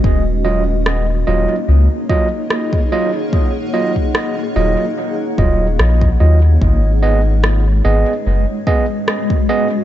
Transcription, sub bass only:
X:1
M:4/4
L:1/8
Q:"Swing 16ths" 1/4=73
K:Ebm
V:1 name="Sub bass" clef=bass
E,,,3 E,,, D,, z3 | z3 E,,, z E,,, B,,, E,, | A,,,3 A,,, G,,, z3 |]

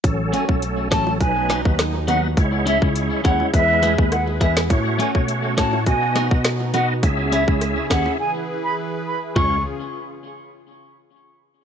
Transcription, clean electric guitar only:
X:1
M:4/4
L:1/8
Q:1/4=103
K:C#m
V:1 name="Clean electric guitar"
z [A,CF] z [A,CF] z [B,DF] z [B,DF] | z [CEG] z [CEG] z [B,EG] z [B,EG] | z [A,CF] z [A,CF] z [B,DF] z [B,DF] | z [CEG] z [CEG] z4 |
[C^EG] z6 z |]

